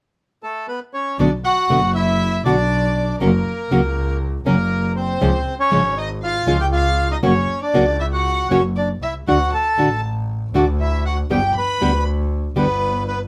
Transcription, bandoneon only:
0.43 A3 A4
0.68 B3 B4
0.94 C#4 C#5
1.19 D4 D5
1.44 F#4 F#5
1.95 E4 E5
2.45 D4 D5
3.21 A#3 A#4
4.46 A#3 A#4
4.96 C4 C5
5.59 C#4 C#5
5.97 D#4 D#5
6.23 F4 F5
6.60 G4 G5
6.72 F4 F5
7.11 D#4 D#5
7.24 C#4 C#5
7.62 D4 D5
7.99 E4 E5
8.13 F#4 F#5
8.51 C#4 C#5
8.77 D4 D5
9.02 E4 E5
9.28 F#4 F#5
9.54 A4 A5
10.55 D4 D5
10.81 E4 E5
11.05 F#4 F#5
11.31 G4 G5
11.58 B4 B5
12.57 B3 B4
13.08 B3 B4

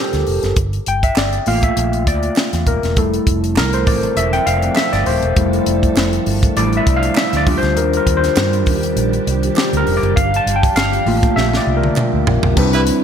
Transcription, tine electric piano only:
Already playing: G3 D4 F4 G4 A4 A#4 C5
0.88 G5
1.04 E5
1.18 D5
1.47 A3 A#3 F4 F5
1.64 E5
2.08 D5
2.67 A#4
2.97 G3 A3 E4 A4
3.58 A#4
3.74 C5
3.87 D5
4.17 E5
4.33 G5
4.46 F5
4.76 E5
4.93 D5
5.07 C5
5.37 G3 A3 E4
6.56 G3 A3 E4 D5
6.77 E5
6.96 F5
7.17 E5
7.37 D5
7.46 G3 D4 F4
7.58 C5
7.77 A#4
7.97 A#4
8.17 C5
9.57 G4
9.77 A#4
9.97 D5
10.16 F5
10.36 A5
10.56 G5
10.76 F5
11.06 A3 A#3 F4
11.36 E5
11.57 D5
11.77 A#4
12.56 G3 C4 D4 D#4 B4
12.64 E4

